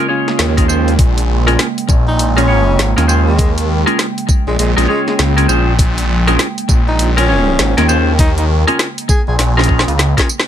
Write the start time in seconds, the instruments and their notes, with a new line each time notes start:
Already playing: ambient pad C#3 G#3 A#3 F4
0.08 clean electric guitar C#4 F4 G#4 C#5
0.28 snare
0.39 detuned saw bass D#2, snare, closed hi-hat
0.57 clean electric guitar C#4 F4 G#4 A#4, kick, closed hi-hat
0.68 clean electric guitar C#4 F4 G#4 C5, tambourine
0.88 closed hi-hat
0.99 detuned saw bass A#1, ambient pad G5, kick, closed hi-hat
1.18 closed hi-hat
1.47 clean electric guitar C#4 F4 G#4 A#4, closed hi-hat
1.59 snare, closed hi-hat
1.78 closed hi-hat
1.89 detuned saw bass A#1, kick, tambourine
2.08 tenor saxophone D#4
2.19 closed hi-hat
2.37 tenor saxophone C#4, clean electric guitar C#4 F4 G#4 A#4, closed hi-hat
2.48 clean electric guitar C#4 F4 G#4 C#5
2.79 detuned saw bass G#1, snare, closed hi-hat
2.96 detuned saw bass D#2, clean electric guitar C#4 F4 G#4 A#4, snare, closed hi-hat
3.08 clean electric guitar C#4 F4 G#4 C5, tambourine
3.28 tenor saxophone G#3
3.39 kick, closed hi-hat
3.58 closed hi-hat
3.86 clean electric guitar C#4 F4 G#4 A#4, closed hi-hat
3.99 snare, closed hi-hat
4.18 closed hi-hat
4.29 kick, tambourine
4.47 detuned saw bass A#1, tenor saxophone G#3
4.59 detuned saw bass A#1, tenor saxophone G#3, closed hi-hat
4.77 detuned saw bass A#1, clean electric guitar C#4 F4 G#4 A#4, closed hi-hat
4.88 tenor saxophone G#3, clean electric guitar C#4 F4 G#4 C#5
5.08 tenor saxophone G#3, snare
5.19 detuned saw bass C#2, snare, closed hi-hat
5.37 clean electric guitar C#4 F4 G#4 A#4, closed hi-hat
5.48 detuned saw bass A#1, clean electric guitar C#4 F4 G#4 C5, tambourine
5.79 detuned saw bass A#1, kick, closed hi-hat
5.98 closed hi-hat
6.27 clean electric guitar C#4 F4 G#4 A#4, closed hi-hat
6.39 snare, closed hi-hat
6.58 closed hi-hat
6.69 detuned saw bass A#1, kick, tambourine
6.88 tenor saxophone D#4
6.99 closed hi-hat
7.17 clean electric guitar C#4 F4 G#4 A#4, tenor saxophone C#4, closed hi-hat
7.29 clean electric guitar C#4 F4 G#4 C#5
7.59 detuned saw bass G#1, snare, closed hi-hat
7.77 detuned saw bass D#2, clean electric guitar C#4 F4 G#4 A#4, snare, closed hi-hat
7.88 clean electric guitar C#4 F4 G#4 C5, tambourine
8.19 tenor saxophone D#4, kick, closed hi-hat
8.38 tenor saxophone D#4, closed hi-hat
8.67 clean electric guitar C#4 F4 G#4 A#4, closed hi-hat
8.79 snare, closed hi-hat
8.98 closed hi-hat
9.09 tenor saxophone G#4, kick, tambourine
9.28 detuned saw bass A#1, tenor saxophone G#4
9.39 detuned saw bass A#1, snare, closed hi-hat
9.57 clean electric guitar C#4 F4 G#4 A#4, snare
9.64 closed hi-hat
9.68 clean electric guitar C#4 F4 G#4 A#4, kick
9.79 snare
9.88 detuned saw bass C#2, closed hi-hat
9.99 snare, closed hi-hat
10.17 clean electric guitar C#4 F4 G#4 A#4, kick, snare, closed hi-hat
10.29 tambourine
10.40 snare